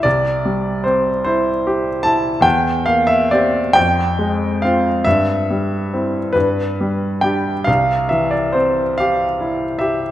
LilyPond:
\new Staff \with { instrumentName = "Grand piano" } { \time 6/8 \key c \major \tempo 4. = 47 << { d''4 c''8 c''4 a''8 | g''8 f''16 e''16 d''8 g''4 f''8 | e''4. b'4 g''8 | f''8 e''16 d''16 c''8 f''4 e''8 | } \\ { c,8 g8 c'8 e'8 g'8 e'8 | e,8 bes8 <c' g'>8 f,8 aes8 <c' f'>8 | g,8 g8 <c' e'>8 g,8 g8 <d' g'>8 | c,8 e8 c'8 g'8 e'8 g'8 | } >> }